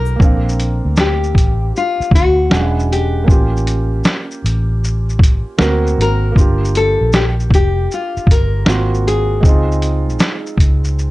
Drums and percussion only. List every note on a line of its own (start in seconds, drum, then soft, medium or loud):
0.06 shaker soft
0.20 kick loud
0.20 shaker medium
0.49 shaker medium
0.60 closed hi-hat medium
0.60 shaker soft
0.96 snare loud
0.96 shaker medium
1.24 shaker soft
1.35 kick medium
1.35 closed hi-hat medium
1.35 shaker soft
1.76 shaker medium
2.02 shaker soft
2.11 kick loud
2.16 closed hi-hat medium
2.16 shaker medium
2.51 snare medium
2.51 shaker medium
2.79 shaker soft
2.93 closed hi-hat medium
2.93 shaker medium
3.28 kick loud
3.28 shaker medium
3.57 shaker soft
3.67 closed hi-hat medium
3.67 shaker soft
4.04 snare loud
4.04 shaker medium
4.31 shaker soft
4.46 closed hi-hat medium
4.46 shaker medium
4.84 shaker medium
5.09 shaker soft
5.19 kick medium
5.23 closed hi-hat medium
5.23 shaker medium
5.59 snare loud
5.59 shaker medium
5.87 shaker medium
6.01 closed hi-hat medium
6.01 shaker soft
6.36 kick loud
6.36 shaker medium
6.65 shaker soft
6.75 closed hi-hat medium
6.75 shaker soft
7.13 snare loud
7.13 shaker medium
7.40 shaker soft
7.51 kick medium
7.51 closed hi-hat medium
7.51 shaker soft
7.91 shaker medium
8.17 shaker soft
8.27 kick loud
8.31 closed hi-hat medium
8.31 shaker medium
8.66 snare loud
8.66 shaker medium
8.94 shaker medium
9.08 closed hi-hat medium
9.08 shaker soft
9.43 kick loud
9.43 shaker medium
9.72 shaker soft
9.82 closed hi-hat medium
9.82 shaker soft
10.10 shaker soft
10.19 snare loud
10.19 shaker medium
10.46 shaker soft
10.58 kick medium
10.58 closed hi-hat medium
10.58 shaker soft
10.84 shaker soft
10.99 shaker medium